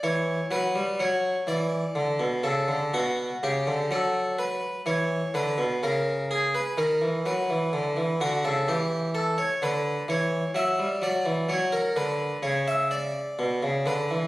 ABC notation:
X:1
M:3/4
L:1/16
Q:1/4=63
K:Bm
V:1 name="Harpsichord"
c2 B2 c2 d4 A2 | F2 G2 A2 B2 c2 B2 | ^A2 ^G B A2 B4 F =A | [K:Amix] G2 A c B2 c2 e2 d2 |
c ^A B2 c e d4 B2 |]
V:2 name="Harpsichord" clef=bass
E,2 F, G, F,2 E,2 D, B,, C, D, | B,,2 C, D, F,4 E,2 D, B,, | C,4 ^D, E, F, E, =D, E, D, C, | [K:Amix] E,4 D,2 E,2 F, G, F, E, |
F,2 D,2 C,4 B,, C, D, E, |]